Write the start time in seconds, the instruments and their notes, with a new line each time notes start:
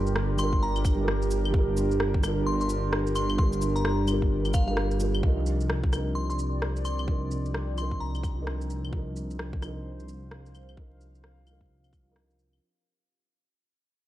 Already playing: detuned saw bass G1, felt piano G3 D4 F4 A#4, ambient pad G3 D4 G4 A#4, synth bell C6
0.07 shaker
0.16 cross-stick
0.35 felt piano G3 D4, synth bell C6, cabasa, claves, shaker
0.40 felt piano F4 A#4
0.53 kick
0.63 synth bell A#5
0.76 claves, shaker
0.85 kick, cabasa, claves, shaker
0.95 felt piano G3 D4
1.01 felt piano F4 A#4
1.08 cross-stick
1.22 shaker
1.31 cabasa, shaker
1.45 claves
1.51 felt piano G3 D4, kick
1.56 felt piano F4 A#4
1.77 cabasa, shaker
1.91 shaker
2.00 cross-stick
2.14 kick
2.20 felt piano G3 D4, cross-stick, cabasa, claves, shaker
2.25 felt piano F4 A#4
2.46 synth bell C6
2.61 synth bell C6, shaker
2.70 cabasa, shaker
2.93 cross-stick
3.07 shaker
3.15 synth bell C6, cabasa, claves, shaker
3.30 claves
3.37 felt piano G3 D4 F4 A#4, synth bell C6, kick
3.53 cabasa
3.62 cabasa, shaker
3.76 synth bell A#5, shaker
3.85 cross-stick
4.04 felt piano G3 D4, cabasa, claves, shaker
4.09 felt piano F4 A#4
4.22 kick
4.45 claves, shaker
4.54 synth bell F5, kick, cabasa, claves, shaker
4.66 felt piano G3 D4 F4, synth bell F5
4.71 felt piano A#4
4.77 cross-stick
4.91 shaker
4.99 felt piano G3 D4 F4 A#4, cabasa, shaker
5.15 claves
5.20 detuned saw bass C2, felt piano F3 D4, kick
5.24 ambient pad C4, felt piano D#4 A#4
5.46 shaker
5.61 ambient pad D5, shaker
5.70 cross-stick
5.84 kick
5.89 felt piano F3 D4, cross-stick, claves, shaker
5.94 felt piano D#4 A#4
6.15 synth bell C6
6.30 synth bell C6, shaker
6.39 shaker
6.62 cross-stick
6.76 shaker
6.85 synth bell C6, claves, shaker
6.99 claves
7.06 felt piano F3 D4 D#4, kick
7.11 felt piano A#4
7.31 shaker
7.46 shaker
7.54 cross-stick
7.74 felt piano F3 D4
7.78 felt piano D#4 A#4, synth bell C6, claves, shaker
7.91 kick
8.00 synth bell A#5
8.15 claves, shaker
8.23 kick, claves, shaker
8.34 felt piano F3 D4
8.40 felt piano D#4 A#4
8.47 cross-stick
8.61 shaker
8.70 shaker
8.85 ambient pad C5, claves
8.89 felt piano F3 D4, kick
8.95 felt piano D#4 A#4
9.16 shaker
9.31 shaker
9.39 cross-stick
9.53 kick
9.58 felt piano F3 D4, cross-stick, claves, shaker
9.64 felt piano D#4 A#4
9.85 ambient pad F5
10.00 shaker
10.09 shaker
10.31 cross-stick
10.46 shaker
10.55 claves, shaker
10.69 claves
10.76 felt piano F3 D4 D#4, kick
10.80 felt piano A#4
11.01 shaker
11.15 shaker
11.24 cross-stick
11.43 felt piano F3 D4, claves, shaker
11.48 felt piano D#4 A#4
11.61 kick
11.84 claves, shaker
11.93 kick, claves, shaker
12.03 felt piano F3 D4
12.09 felt piano D#4 A#4
12.16 cross-stick
12.31 shaker
12.39 shaker
12.53 claves